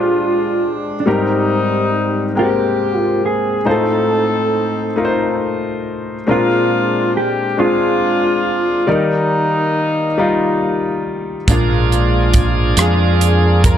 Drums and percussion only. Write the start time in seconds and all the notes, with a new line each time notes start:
11.48 kick, closed hi-hat
11.92 closed hi-hat
12.34 kick, closed hi-hat
12.77 cross-stick, closed hi-hat
13.21 closed hi-hat
13.64 kick, closed hi-hat